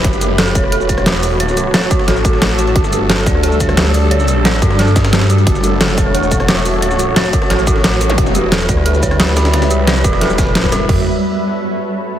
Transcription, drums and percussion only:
0.04 kick, closed hi-hat
0.13 snare, shaker
0.21 closed hi-hat, shaker
0.38 snare, closed hi-hat
0.47 shaker
0.55 kick, closed hi-hat, shaker
0.64 cross-stick
0.72 closed hi-hat
0.81 shaker
0.89 kick, closed hi-hat, shaker
0.98 cross-stick, closed hi-hat
1.06 snare, closed hi-hat
1.15 closed hi-hat
1.23 closed hi-hat, open hi-hat, shaker
1.40 closed hi-hat
1.49 snare, shaker
1.57 closed hi-hat, shaker
1.74 snare, closed hi-hat
1.82 shaker
1.91 kick, closed hi-hat, shaker
1.99 cross-stick, snare
2.08 snare, closed hi-hat
2.16 shaker
2.25 kick, closed hi-hat, shaker
2.33 snare
2.42 snare, closed hi-hat
2.59 closed hi-hat, shaker
2.67 closed hi-hat
2.76 kick, closed hi-hat
2.84 snare, shaker
2.93 closed hi-hat, shaker
3.10 snare, closed hi-hat
3.18 shaker
3.26 kick, closed hi-hat, shaker
3.35 cross-stick
3.43 closed hi-hat
3.52 shaker
3.60 kick, closed hi-hat, shaker
3.69 cross-stick, closed hi-hat
3.77 snare, closed hi-hat
3.86 closed hi-hat
3.94 closed hi-hat, open hi-hat, shaker
4.11 closed hi-hat
4.20 snare, shaker
4.28 closed hi-hat, shaker
4.45 snare, closed hi-hat
4.54 shaker
4.62 kick, closed hi-hat, shaker
4.70 cross-stick, snare
4.79 snare, closed hi-hat
4.87 shaker
4.96 kick, snare, closed hi-hat, shaker
5.04 snare, closed hi-hat
5.13 snare, closed hi-hat
5.21 snare, closed hi-hat
5.30 closed hi-hat, shaker
5.38 closed hi-hat
5.47 kick, closed hi-hat
5.55 snare, shaker
5.64 closed hi-hat, shaker
5.81 snare, closed hi-hat
5.89 shaker
5.98 kick, closed hi-hat, shaker
6.06 cross-stick
6.15 closed hi-hat
6.23 shaker
6.31 kick, closed hi-hat, shaker
6.40 cross-stick, closed hi-hat
6.48 snare, closed hi-hat
6.57 closed hi-hat
6.65 closed hi-hat, open hi-hat, shaker
6.82 closed hi-hat
6.91 snare, shaker
6.99 closed hi-hat, shaker
7.16 snare, closed hi-hat
7.25 shaker
7.33 kick, closed hi-hat, shaker
7.42 cross-stick, snare
7.50 snare, closed hi-hat
7.59 shaker
7.67 kick, closed hi-hat, shaker
7.76 snare
7.84 snare, closed hi-hat
8.01 closed hi-hat, shaker
8.09 closed hi-hat
8.18 kick, closed hi-hat
8.26 snare, shaker
8.35 closed hi-hat, shaker
8.52 snare, closed hi-hat
8.60 shaker
8.69 kick, closed hi-hat, shaker
8.77 cross-stick
8.86 closed hi-hat
8.94 shaker
9.03 kick, closed hi-hat, shaker
9.11 cross-stick, closed hi-hat
9.20 snare, closed hi-hat
9.28 closed hi-hat
9.37 snare, closed hi-hat, shaker
9.45 snare, closed hi-hat
9.54 snare, closed hi-hat
9.62 snare, closed hi-hat, shaker
9.70 closed hi-hat, shaker
9.87 snare, closed hi-hat
9.96 shaker
10.04 kick, closed hi-hat, shaker
10.13 cross-stick, snare
10.21 snare, closed hi-hat
10.30 shaker
10.38 kick, snare, closed hi-hat, shaker
10.47 snare
10.55 snare, closed hi-hat
10.64 kick, shaker
10.72 cross-stick, snare, closed hi-hat, shaker
10.89 kick, floor tom, crash

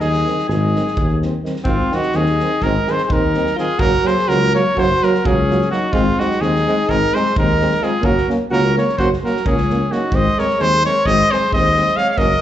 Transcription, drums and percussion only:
0.00 snare
0.14 snare
0.27 snare
0.38 snare
0.50 snare
0.76 snare
0.87 snare
0.97 kick
1.22 snare
1.45 snare
1.56 snare
1.65 kick
1.92 snare
2.03 snare
2.12 snare
2.26 snare
2.40 snare
2.61 kick, snare
2.87 snare
2.98 snare
3.10 kick
3.34 snare
3.46 snare
3.58 snare
3.79 kick
4.07 snare
4.18 snare
4.30 snare
4.43 snare
4.55 snare
4.77 kick, snare
5.03 snare
5.14 snare
5.25 kick
5.51 snare
5.62 snare
5.72 snare
5.93 kick
6.20 snare
6.31 snare
6.42 snare
6.56 snare
6.68 snare
6.89 kick, snare
7.15 snare
7.26 snare
7.36 kick
7.61 snare
7.71 snare
7.83 snare
8.03 kick
8.18 snare
8.30 snare
8.53 snare
8.65 snare
8.78 snare
8.89 snare
8.99 kick, snare
9.13 snare
9.26 snare
9.36 snare
9.46 kick
9.58 snare
9.70 snare
9.92 snare
10.12 kick
10.38 snare
10.49 snare
10.59 snare
10.72 snare
10.83 snare
11.06 kick, snare
11.32 snare
11.43 snare
11.52 kick
11.76 snare
11.88 snare
11.98 snare
12.18 kick

